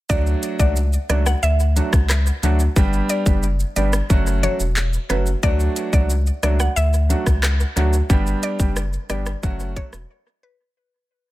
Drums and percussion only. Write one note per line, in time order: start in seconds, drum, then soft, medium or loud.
0.10 kick loud
0.10 shaker medium
0.27 shaker soft
0.43 closed hi-hat medium
0.43 shaker medium
0.59 kick medium
0.59 shaker medium
0.76 shaker medium
0.93 shaker medium
1.10 cross-stick medium
1.10 closed hi-hat medium
1.10 shaker soft
1.26 cross-stick medium
1.26 shaker medium
1.43 shaker medium
1.60 shaker soft
1.77 closed hi-hat medium
1.77 shaker medium
1.93 kick medium
1.93 cross-stick loud
1.93 shaker medium
2.10 cross-stick medium
2.10 clap loud
2.10 shaker medium
2.27 shaker medium
2.43 closed hi-hat medium
2.43 shaker soft
2.60 shaker medium
2.76 kick loud
2.76 shaker medium
2.93 shaker soft
3.09 closed hi-hat medium
3.09 shaker medium
3.26 kick medium
3.26 shaker medium
3.43 shaker medium
3.60 shaker medium
3.76 closed hi-hat medium
3.76 shaker soft
3.93 cross-stick loud
3.93 shaker medium
4.10 kick loud
4.10 shaker medium
4.27 shaker medium
4.43 closed hi-hat medium
4.43 shaker soft
4.60 shaker medium
4.76 clap loud
4.76 shaker medium
4.93 shaker medium
5.10 cross-stick medium
5.10 closed hi-hat medium
5.10 shaker soft
5.26 shaker medium
5.43 kick loud
5.43 shaker medium
5.60 shaker medium
5.76 closed hi-hat medium
5.76 shaker medium
5.93 kick medium
5.93 shaker medium
6.10 shaker medium
6.27 shaker medium
6.43 cross-stick medium
6.43 closed hi-hat medium
6.43 shaker medium
6.60 cross-stick medium
6.60 shaker medium
6.77 shaker medium
6.94 shaker soft
7.10 closed hi-hat medium
7.10 shaker medium
7.26 kick medium
7.26 cross-stick medium
7.26 shaker medium
7.43 cross-stick loud
7.43 clap loud
7.43 shaker medium
7.60 shaker medium
7.77 closed hi-hat medium
7.77 shaker soft
7.93 shaker medium
8.10 kick loud
8.10 shaker medium
8.27 shaker soft
8.43 closed hi-hat medium
8.43 shaker medium
8.60 kick medium
8.60 shaker medium
8.76 cross-stick loud
8.76 shaker medium
8.93 shaker medium
9.10 cross-stick medium
9.10 closed hi-hat medium
9.10 shaker medium
9.26 cross-stick loud
9.26 shaker medium
9.43 kick loud
9.43 shaker medium
9.60 shaker soft
9.76 kick loud
9.76 closed hi-hat medium
9.76 shaker medium
9.93 cross-stick loud
9.93 shaker medium